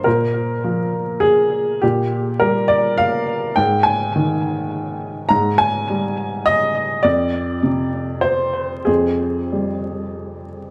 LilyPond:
<<
  \new Staff \with { instrumentName = "Upright piano" } { \time 3/4 \key f \dorian \tempo 4 = 102 bes'2 aes'4 | g'4 bes'8 d''8 f''4 | g''8 aes''2~ aes''8 | bes''8 aes''4. ees''4 |
d''2 c''4 | aes'2~ aes'8 r8 | }
  \new Staff \with { instrumentName = "Upright piano" } { \clef bass \time 3/4 \key f \dorian bes,4 f2 | bes,4 g2 | aes,4 ees2 | aes,4 g2 |
f,4 c2 | f,4 g2 | }
>>